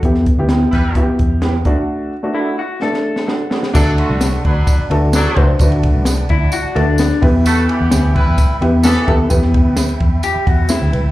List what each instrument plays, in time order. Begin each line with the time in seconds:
Already playing: upright piano A4
0.03 fingered electric bass E2, upright piano B3 E4 G4, kick, closed hi-hat
0.14 snare
0.26 kick, closed hi-hat
0.38 fingered electric bass D2, upright piano B3 E4 G4
0.49 clean electric guitar B3 E4 G4, snare, closed hi-hat
0.71 fingered electric bass E2, horn section G3 E4 B4, kick, closed hi-hat
0.95 upright piano B3 E4 F#4, kick, closed hi-hat
1.02 upright piano G4
1.08 muted fingered electric bass stroke
1.19 fingered electric bass E2, kick, closed hi-hat
1.42 clean electric guitar B3 E4 G4, snare, closed hi-hat
1.65 fingered electric bass D2, clean electric guitar A3 D4 F#4, upright piano A3 D4 F#4, kick, closed hi-hat
2.23 upright piano A3 D4 F#4
2.34 clean electric guitar A3 D4 E4 F#4
2.59 clean electric guitar F#4
2.82 upright piano A3 D4 A4, clean electric guitar A4, snare
2.94 snare
3.16 snare
3.27 clean electric guitar A3 D4 F#4, snare
3.50 clean electric guitar A3 D4 F#4, snare
3.63 snare
3.73 fingered electric bass D2, horn section F#3 D4 A4, upright piano A3 D4 F#4 A4, tonewheel organ D5 F#5 A5, kick, crash, tambourine
3.97 horn section D3 A3 F#4, ride
4.10 fingered electric bass C2
4.21 snare, ride, tambourine
4.33 ride
4.45 fingered electric bass D2, horn section F#3 D4 B4, kick, ride
4.67 kick, ride, tambourine
4.79 muted fingered electric bass stroke
4.90 fingered electric bass D2, upright piano A3 D4 F#4 A4, ride
5.13 horn section F#3 D4 A4, snare, ride, tambourine
5.26 snare
5.36 fingered electric bass C#2, upright piano A3 D4 F#4 C5, kick, ride
5.59 fingered electric bass D2, upright piano A3 D4 F#4 B4, kick, ride, tambourine
5.72 ride
5.83 kick, ride
5.95 fingered electric bass C2
6.05 snare, ride, tambourine
6.17 ride
6.29 fingered electric bass D2, clean electric guitar E4, kick, ride
6.52 clean electric guitar F#4, ride, tambourine
6.64 muted fingered electric bass stroke
6.75 fingered electric bass D2, upright piano A3 D4 F#4 A4, clean electric guitar D4, ride
6.98 snare, ride, tambourine
7.12 snare
7.21 fingered electric bass E2, upright piano B3 E4 G4 B4, tonewheel organ E5 G5 B5, kick, open hi-hat, ride
7.46 horn section A3 F#4 A4, hi-hat pedal, ride, tambourine
7.68 horn section E3 B3 G4, ride
7.81 fingered electric bass E2
7.91 fingered electric bass D2, snare, ride, tambourine
8.15 horn section G3 E4 B4, kick, ride
8.27 fingered electric bass E2
8.38 kick, ride, tambourine
8.50 muted fingered electric bass stroke
8.61 fingered electric bass E2, upright piano B3 E4 G4 B4, ride
8.83 horn section E3 B3 A4, snare, ride, tambourine
9.07 fingered electric bass D#2, upright piano B3 E4 G4 A4, kick, ride
9.29 fingered electric bass E2, upright piano B3 E4 G4 B4, kick, ride, tambourine
9.42 snare
9.54 kick, ride
9.66 fingered electric bass D2
9.77 snare, ride, tambourine
9.89 ride
10.00 fingered electric bass E2, kick, ride
10.23 clean electric guitar G4, ride, tambourine
10.36 muted fingered electric bass stroke
10.46 fingered electric bass E2, clean electric guitar F#4, upright piano F#5, kick, ride
10.69 clean electric guitar E4, upright piano E5, snare, ride, tambourine
10.82 fingered electric bass D2, snare
10.92 fingered electric bass C2, upright piano B4, ride
11.04 fingered electric bass C#2